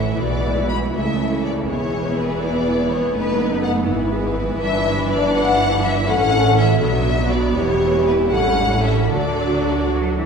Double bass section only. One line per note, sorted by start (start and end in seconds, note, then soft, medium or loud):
0.00 0.15 A1 soft
0.20 0.93 B1 soft
0.94 1.67 C#2 soft
1.69 3.15 E1 soft
3.15 3.86 F#1 soft
3.88 4.61 G#1 soft
4.61 6.06 G1 medium
6.08 6.82 A1 medium
6.82 7.55 B1 medium
7.57 8.33 E1 medium
8.33 9.12 A1 medium
9.12 10.26 D2 soft